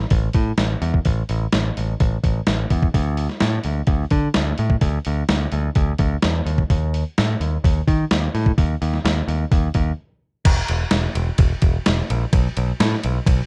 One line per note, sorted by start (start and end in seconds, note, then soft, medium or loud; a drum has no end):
0.10 0.28 A1 medium
0.10 kick loud
0.10 open hi-hat medium
0.33 0.51 A2 medium
0.33 kick medium
0.33 open hi-hat soft
0.57 0.74 A1 medium
0.57 snare medium
0.57 open hi-hat medium
0.81 0.98 E2 medium
0.81 open hi-hat soft
0.94 kick medium
1.05 1.22 A1 medium
1.05 kick medium
1.05 open hi-hat medium
1.29 1.45 A1 medium
1.29 open hi-hat soft
1.52 1.69 A1 medium
1.52 snare loud
1.52 open hi-hat medium
1.77 1.93 A1 medium
1.77 open hi-hat soft
2.00 2.16 A1 medium
2.00 kick loud
2.00 open hi-hat medium
2.23 2.40 A1 medium
2.23 kick medium
2.23 open hi-hat soft
2.46 2.64 A1 medium
2.46 snare loud
2.46 open hi-hat medium
2.70 2.87 E2 medium
2.70 kick medium
2.70 open hi-hat soft
2.82 kick medium
2.94 3.26 D2 medium
2.94 kick medium
2.94 open hi-hat medium
3.17 open hi-hat soft
3.29 snare soft
3.40 3.58 A2 medium
3.40 snare medium
3.40 open hi-hat medium
3.63 3.81 D2 medium
3.63 open hi-hat soft
3.87 4.04 D2 medium
3.87 kick medium
3.87 open hi-hat medium
4.11 4.28 D3 medium
4.11 kick medium
4.11 open hi-hat soft
4.34 4.52 D2 medium
4.34 snare medium
4.34 open hi-hat medium
4.58 4.75 A2 medium
4.58 open hi-hat soft
4.70 kick medium
4.81 4.98 D2 medium
4.81 kick medium
4.81 open hi-hat medium
5.05 5.23 D2 medium
5.05 open hi-hat soft
5.29 5.46 D2 medium
5.29 snare loud
5.29 open hi-hat medium
5.52 5.69 D2 medium
5.52 open hi-hat soft
5.76 5.92 D2 medium
5.76 kick loud
5.76 open hi-hat medium
5.99 6.16 D2 medium
5.99 kick medium
5.99 open hi-hat soft
6.23 6.40 E2 medium
6.23 snare loud
6.23 open hi-hat medium
6.46 6.62 D#2 medium
6.46 open hi-hat soft
6.58 kick medium
6.70 7.03 D#2 medium
6.70 kick medium
6.70 open hi-hat medium
6.94 open hi-hat soft
7.18 7.34 A2 medium
7.18 snare loud
7.18 open hi-hat medium
7.40 7.57 D#2 medium
7.40 open hi-hat soft
7.64 7.80 D#2 medium
7.64 kick medium
7.64 open hi-hat medium
7.87 8.04 D#3 medium
7.87 kick medium
7.87 open hi-hat soft
8.11 8.27 D#2 medium
8.11 snare loud
8.11 open hi-hat medium
8.34 8.51 A2 medium
8.34 open hi-hat soft
8.46 kick medium
8.58 8.74 D#2 medium
8.58 kick medium
8.58 open hi-hat medium
8.81 8.98 D#2 medium
8.81 open hi-hat soft
8.93 snare soft
9.05 9.21 D#2 medium
9.05 snare medium
9.05 open hi-hat medium
9.28 9.44 D#2 medium
9.28 open hi-hat soft
9.52 9.68 D#2 medium
9.52 kick loud
9.52 open hi-hat medium
9.74 9.91 D#2 medium
9.74 kick medium
9.74 open hi-hat soft
10.45 10.60 E1 medium
10.45 kick loud
10.45 crash loud
10.45 ride medium
10.68 10.83 E1 medium
10.68 ride medium
10.91 11.06 E1 medium
10.91 snare loud
10.91 ride medium
11.15 11.30 E1 medium
11.15 ride medium
11.38 11.53 E1 medium
11.38 kick loud
11.38 ride medium
11.62 11.77 E1 medium
11.62 kick medium
11.62 ride medium
11.86 12.01 E1 medium
11.86 snare loud
11.86 ride medium
12.10 12.24 A#1 medium
12.10 ride medium
12.33 12.47 B1 medium
12.33 kick loud
12.33 ride medium
12.57 12.71 B1 medium
12.57 ride medium
12.80 12.94 A2 medium
12.80 snare loud
12.80 ride loud
12.92 snare soft
13.03 13.18 B1 medium
13.03 ride medium
13.26 13.41 B1 medium
13.26 kick loud
13.26 ride loud